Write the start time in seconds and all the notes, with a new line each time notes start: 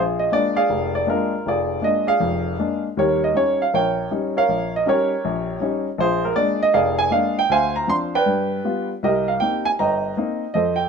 Already playing: A#1 F4 G#4
0.19 D#5
0.31 G#3 A#3 D4 D5
0.56 G#4 D5 F5
0.70 F1
0.95 D5
1.07 G#3 A#3 D4 F4 A#4
1.46 F1 F4 G#4 D5
1.82 G#3 A#3 D4 D#5
2.07 G#4 D5 F5
2.20 F1 F2
2.59 G#3 A#3 D4
2.97 D#2 G3 G4 A#4 C#5
3.24 D#5
3.34 G3 C#4 D#4 C#5
3.62 F5
3.74 A#1 A#4 C#5 G5
4.11 G3 C#4 D#4
4.37 A#4 C#5 F5
4.49 A#1
4.76 D#5
4.86 G3 C#4 D#4 G4 A#4 C#5
5.25 A#1
5.60 G3 C#4 D#4
5.98 A#1 F4 G#4 C5
6.25 A#4
6.35 G#3 A#3 D4 D5
6.63 D#5
6.74 F1 G#4 D5 F5
6.99 G#5
7.11 G#3 A#3 D4 F5
7.39 G5
7.50 D2 C5 F5 G#5
7.76 A#5
7.87 F3 C4 D4 C6
8.15 B4 D5 G5
8.26 G2
8.64 G3 B3 F4
9.03 C2 G4 A#4 D#5
9.28 F5
9.40 A#3 C4 D#4 G5
9.65 G#5
9.79 G1 D#5 G5 A#5
10.17 A#3 C4 D#4
10.54 F2 A4 C5 D#5
10.76 G5